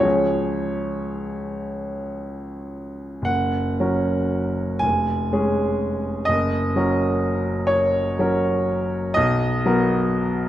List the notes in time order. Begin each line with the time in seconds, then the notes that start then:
Already playing: C#2
0.00 F3 C#4 G#4 C#5
3.22 F#1 F#5
3.80 F#3 C#4 A#4
4.79 F1 G#5
5.33 G#3 C#4 G#4
6.25 F#1 D#5
6.76 F#3 C#4 A#4
7.67 C#5
8.19 F#3 C#4 A#4
9.14 B1 D#5
9.66 F#3 B3 A#4